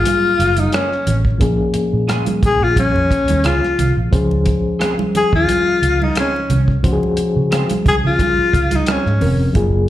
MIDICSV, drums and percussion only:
0, 0, Header, 1, 2, 480
1, 0, Start_track
1, 0, Key_signature, -5, "major"
1, 0, Tempo, 678273
1, 999, Time_signature, 4, 2, 24, 8
1, 6999, End_track
2, 0, Start_track
2, 0, Title_t, "Drums"
2, 39, Note_on_c, 9, 42, 98
2, 47, Note_on_c, 9, 62, 30
2, 47, Note_on_c, 9, 63, 57
2, 109, Note_off_c, 9, 42, 0
2, 118, Note_off_c, 9, 62, 0
2, 118, Note_off_c, 9, 63, 0
2, 283, Note_on_c, 9, 42, 73
2, 353, Note_off_c, 9, 42, 0
2, 400, Note_on_c, 9, 42, 51
2, 407, Note_on_c, 9, 63, 61
2, 471, Note_off_c, 9, 42, 0
2, 478, Note_off_c, 9, 63, 0
2, 513, Note_on_c, 9, 42, 64
2, 519, Note_on_c, 9, 62, 27
2, 527, Note_on_c, 9, 37, 115
2, 583, Note_off_c, 9, 42, 0
2, 589, Note_off_c, 9, 62, 0
2, 597, Note_off_c, 9, 37, 0
2, 654, Note_on_c, 9, 37, 30
2, 725, Note_off_c, 9, 37, 0
2, 756, Note_on_c, 9, 64, 64
2, 757, Note_on_c, 9, 42, 59
2, 826, Note_off_c, 9, 64, 0
2, 828, Note_off_c, 9, 42, 0
2, 883, Note_on_c, 9, 36, 77
2, 954, Note_off_c, 9, 36, 0
2, 996, Note_on_c, 9, 42, 84
2, 997, Note_on_c, 9, 36, 93
2, 997, Note_on_c, 9, 62, 28
2, 1067, Note_off_c, 9, 36, 0
2, 1067, Note_off_c, 9, 42, 0
2, 1067, Note_off_c, 9, 62, 0
2, 1230, Note_on_c, 9, 42, 76
2, 1300, Note_off_c, 9, 42, 0
2, 1477, Note_on_c, 9, 62, 33
2, 1479, Note_on_c, 9, 42, 65
2, 1484, Note_on_c, 9, 37, 89
2, 1547, Note_off_c, 9, 62, 0
2, 1549, Note_off_c, 9, 42, 0
2, 1554, Note_off_c, 9, 37, 0
2, 1602, Note_on_c, 9, 42, 45
2, 1607, Note_on_c, 9, 63, 64
2, 1673, Note_off_c, 9, 42, 0
2, 1678, Note_off_c, 9, 63, 0
2, 1717, Note_on_c, 9, 36, 92
2, 1718, Note_on_c, 9, 64, 65
2, 1719, Note_on_c, 9, 42, 53
2, 1788, Note_off_c, 9, 36, 0
2, 1789, Note_off_c, 9, 42, 0
2, 1789, Note_off_c, 9, 64, 0
2, 1955, Note_on_c, 9, 36, 78
2, 1958, Note_on_c, 9, 42, 92
2, 1966, Note_on_c, 9, 63, 59
2, 2026, Note_off_c, 9, 36, 0
2, 2029, Note_off_c, 9, 42, 0
2, 2037, Note_off_c, 9, 63, 0
2, 2092, Note_on_c, 9, 62, 26
2, 2163, Note_off_c, 9, 62, 0
2, 2198, Note_on_c, 9, 36, 84
2, 2204, Note_on_c, 9, 42, 70
2, 2269, Note_off_c, 9, 36, 0
2, 2275, Note_off_c, 9, 42, 0
2, 2321, Note_on_c, 9, 42, 58
2, 2334, Note_on_c, 9, 63, 68
2, 2392, Note_off_c, 9, 42, 0
2, 2405, Note_off_c, 9, 63, 0
2, 2434, Note_on_c, 9, 42, 62
2, 2448, Note_on_c, 9, 37, 96
2, 2505, Note_off_c, 9, 42, 0
2, 2518, Note_off_c, 9, 37, 0
2, 2578, Note_on_c, 9, 37, 33
2, 2578, Note_on_c, 9, 62, 25
2, 2649, Note_off_c, 9, 37, 0
2, 2649, Note_off_c, 9, 62, 0
2, 2681, Note_on_c, 9, 42, 65
2, 2683, Note_on_c, 9, 64, 68
2, 2752, Note_off_c, 9, 42, 0
2, 2754, Note_off_c, 9, 64, 0
2, 2920, Note_on_c, 9, 36, 97
2, 2921, Note_on_c, 9, 42, 83
2, 2922, Note_on_c, 9, 62, 27
2, 2991, Note_off_c, 9, 36, 0
2, 2992, Note_off_c, 9, 42, 0
2, 2993, Note_off_c, 9, 62, 0
2, 3052, Note_on_c, 9, 62, 22
2, 3123, Note_off_c, 9, 62, 0
2, 3153, Note_on_c, 9, 42, 75
2, 3160, Note_on_c, 9, 36, 84
2, 3224, Note_off_c, 9, 42, 0
2, 3231, Note_off_c, 9, 36, 0
2, 3403, Note_on_c, 9, 42, 73
2, 3408, Note_on_c, 9, 37, 96
2, 3474, Note_off_c, 9, 42, 0
2, 3479, Note_off_c, 9, 37, 0
2, 3532, Note_on_c, 9, 63, 71
2, 3603, Note_off_c, 9, 63, 0
2, 3644, Note_on_c, 9, 42, 54
2, 3644, Note_on_c, 9, 64, 66
2, 3715, Note_off_c, 9, 42, 0
2, 3715, Note_off_c, 9, 64, 0
2, 3771, Note_on_c, 9, 36, 82
2, 3841, Note_off_c, 9, 36, 0
2, 3883, Note_on_c, 9, 42, 95
2, 3890, Note_on_c, 9, 62, 26
2, 3890, Note_on_c, 9, 63, 60
2, 3954, Note_off_c, 9, 42, 0
2, 3961, Note_off_c, 9, 62, 0
2, 3961, Note_off_c, 9, 63, 0
2, 4125, Note_on_c, 9, 42, 66
2, 4196, Note_off_c, 9, 42, 0
2, 4258, Note_on_c, 9, 63, 67
2, 4329, Note_off_c, 9, 63, 0
2, 4355, Note_on_c, 9, 42, 69
2, 4369, Note_on_c, 9, 37, 112
2, 4369, Note_on_c, 9, 62, 29
2, 4426, Note_off_c, 9, 42, 0
2, 4439, Note_off_c, 9, 62, 0
2, 4440, Note_off_c, 9, 37, 0
2, 4502, Note_on_c, 9, 62, 25
2, 4573, Note_off_c, 9, 62, 0
2, 4599, Note_on_c, 9, 42, 64
2, 4604, Note_on_c, 9, 64, 69
2, 4670, Note_off_c, 9, 42, 0
2, 4675, Note_off_c, 9, 64, 0
2, 4727, Note_on_c, 9, 36, 71
2, 4797, Note_off_c, 9, 36, 0
2, 4841, Note_on_c, 9, 36, 94
2, 4841, Note_on_c, 9, 42, 84
2, 4844, Note_on_c, 9, 62, 27
2, 4912, Note_off_c, 9, 36, 0
2, 4912, Note_off_c, 9, 42, 0
2, 4915, Note_off_c, 9, 62, 0
2, 4975, Note_on_c, 9, 62, 24
2, 5045, Note_off_c, 9, 62, 0
2, 5073, Note_on_c, 9, 42, 81
2, 5144, Note_off_c, 9, 42, 0
2, 5321, Note_on_c, 9, 42, 71
2, 5322, Note_on_c, 9, 62, 34
2, 5326, Note_on_c, 9, 37, 90
2, 5392, Note_off_c, 9, 42, 0
2, 5393, Note_off_c, 9, 62, 0
2, 5397, Note_off_c, 9, 37, 0
2, 5446, Note_on_c, 9, 42, 45
2, 5455, Note_on_c, 9, 62, 32
2, 5455, Note_on_c, 9, 63, 69
2, 5516, Note_off_c, 9, 42, 0
2, 5526, Note_off_c, 9, 62, 0
2, 5526, Note_off_c, 9, 63, 0
2, 5561, Note_on_c, 9, 36, 91
2, 5561, Note_on_c, 9, 64, 67
2, 5565, Note_on_c, 9, 42, 52
2, 5632, Note_off_c, 9, 36, 0
2, 5632, Note_off_c, 9, 64, 0
2, 5635, Note_off_c, 9, 42, 0
2, 5797, Note_on_c, 9, 36, 86
2, 5800, Note_on_c, 9, 42, 81
2, 5807, Note_on_c, 9, 63, 63
2, 5868, Note_off_c, 9, 36, 0
2, 5870, Note_off_c, 9, 42, 0
2, 5877, Note_off_c, 9, 63, 0
2, 6040, Note_on_c, 9, 36, 84
2, 6045, Note_on_c, 9, 42, 70
2, 6111, Note_off_c, 9, 36, 0
2, 6116, Note_off_c, 9, 42, 0
2, 6165, Note_on_c, 9, 42, 57
2, 6167, Note_on_c, 9, 63, 66
2, 6236, Note_off_c, 9, 42, 0
2, 6238, Note_off_c, 9, 63, 0
2, 6273, Note_on_c, 9, 42, 71
2, 6287, Note_on_c, 9, 37, 109
2, 6344, Note_off_c, 9, 42, 0
2, 6358, Note_off_c, 9, 37, 0
2, 6415, Note_on_c, 9, 37, 32
2, 6486, Note_off_c, 9, 37, 0
2, 6519, Note_on_c, 9, 46, 44
2, 6521, Note_on_c, 9, 64, 67
2, 6589, Note_off_c, 9, 46, 0
2, 6591, Note_off_c, 9, 64, 0
2, 6758, Note_on_c, 9, 42, 89
2, 6758, Note_on_c, 9, 62, 29
2, 6759, Note_on_c, 9, 36, 96
2, 6829, Note_off_c, 9, 42, 0
2, 6829, Note_off_c, 9, 62, 0
2, 6830, Note_off_c, 9, 36, 0
2, 6999, End_track
0, 0, End_of_file